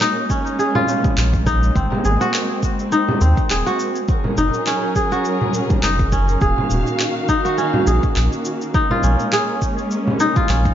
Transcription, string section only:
0, 0, Header, 1, 2, 480
1, 0, Start_track
1, 0, Tempo, 582524
1, 1446, Time_signature, 4, 2, 24, 8
1, 8850, End_track
2, 0, Start_track
2, 0, Title_t, "String section"
2, 0, Program_c, 0, 48
2, 0, Note_on_c, 0, 56, 73
2, 0, Note_on_c, 0, 58, 63
2, 0, Note_on_c, 0, 61, 81
2, 1427, Note_off_c, 0, 61, 0
2, 1448, Note_on_c, 0, 60, 77
2, 3332, Note_off_c, 0, 58, 0
2, 3334, Note_off_c, 0, 56, 0
2, 3348, Note_off_c, 0, 60, 0
2, 3367, Note_on_c, 0, 54, 72
2, 3367, Note_on_c, 0, 61, 60
2, 3368, Note_on_c, 0, 70, 73
2, 3369, Note_on_c, 0, 68, 65
2, 5267, Note_off_c, 0, 54, 0
2, 5267, Note_off_c, 0, 61, 0
2, 5268, Note_off_c, 0, 68, 0
2, 5268, Note_off_c, 0, 70, 0
2, 5285, Note_on_c, 0, 58, 64
2, 5285, Note_on_c, 0, 77, 62
2, 5286, Note_on_c, 0, 51, 72
2, 5286, Note_on_c, 0, 66, 78
2, 7186, Note_off_c, 0, 77, 0
2, 7187, Note_off_c, 0, 51, 0
2, 7187, Note_off_c, 0, 66, 0
2, 7203, Note_on_c, 0, 56, 68
2, 7203, Note_on_c, 0, 61, 76
2, 8850, Note_off_c, 0, 56, 0
2, 8850, Note_off_c, 0, 58, 0
2, 8850, Note_off_c, 0, 61, 0
2, 8850, End_track
0, 0, End_of_file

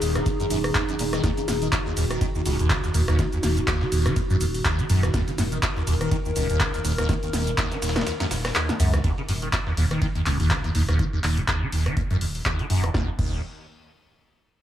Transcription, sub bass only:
0, 0, Header, 1, 2, 480
1, 0, Start_track
1, 0, Key_signature, -6, "minor"
1, 0, Tempo, 487805
1, 1216, Time_signature, 4, 2, 24, 8
1, 14387, End_track
2, 0, Start_track
2, 0, Title_t, "Sub bass"
2, 0, Program_c, 0, 38
2, 17, Note_on_c, 0, 27, 88
2, 222, Note_off_c, 0, 27, 0
2, 497, Note_on_c, 0, 27, 100
2, 702, Note_off_c, 0, 27, 0
2, 977, Note_on_c, 0, 27, 85
2, 1182, Note_off_c, 0, 27, 0
2, 1457, Note_on_c, 0, 27, 101
2, 1662, Note_off_c, 0, 27, 0
2, 1937, Note_on_c, 0, 27, 92
2, 2142, Note_off_c, 0, 27, 0
2, 2417, Note_on_c, 0, 27, 97
2, 2622, Note_off_c, 0, 27, 0
2, 2897, Note_on_c, 0, 27, 85
2, 3102, Note_off_c, 0, 27, 0
2, 3377, Note_on_c, 0, 27, 105
2, 3582, Note_off_c, 0, 27, 0
2, 3857, Note_on_c, 0, 27, 92
2, 4062, Note_off_c, 0, 27, 0
2, 4337, Note_on_c, 0, 27, 102
2, 4542, Note_off_c, 0, 27, 0
2, 4817, Note_on_c, 0, 27, 85
2, 5022, Note_off_c, 0, 27, 0
2, 5296, Note_on_c, 0, 27, 104
2, 5502, Note_off_c, 0, 27, 0
2, 5776, Note_on_c, 0, 27, 88
2, 5982, Note_off_c, 0, 27, 0
2, 6256, Note_on_c, 0, 27, 100
2, 6462, Note_off_c, 0, 27, 0
2, 6737, Note_on_c, 0, 27, 84
2, 6942, Note_off_c, 0, 27, 0
2, 7217, Note_on_c, 0, 27, 107
2, 7422, Note_off_c, 0, 27, 0
2, 7696, Note_on_c, 0, 27, 92
2, 7902, Note_off_c, 0, 27, 0
2, 8176, Note_on_c, 0, 27, 99
2, 8382, Note_off_c, 0, 27, 0
2, 8656, Note_on_c, 0, 37, 91
2, 8862, Note_off_c, 0, 37, 0
2, 9136, Note_on_c, 0, 27, 100
2, 9342, Note_off_c, 0, 27, 0
2, 9616, Note_on_c, 0, 27, 89
2, 9822, Note_off_c, 0, 27, 0
2, 10096, Note_on_c, 0, 27, 98
2, 10302, Note_off_c, 0, 27, 0
2, 10576, Note_on_c, 0, 27, 84
2, 10782, Note_off_c, 0, 27, 0
2, 11056, Note_on_c, 0, 27, 102
2, 11262, Note_off_c, 0, 27, 0
2, 11536, Note_on_c, 0, 27, 88
2, 11742, Note_off_c, 0, 27, 0
2, 12016, Note_on_c, 0, 27, 98
2, 12222, Note_off_c, 0, 27, 0
2, 12495, Note_on_c, 0, 27, 82
2, 12701, Note_off_c, 0, 27, 0
2, 12736, Note_on_c, 0, 27, 98
2, 12882, Note_off_c, 0, 27, 0
2, 12977, Note_on_c, 0, 27, 99
2, 13200, Note_off_c, 0, 27, 0
2, 14387, End_track
0, 0, End_of_file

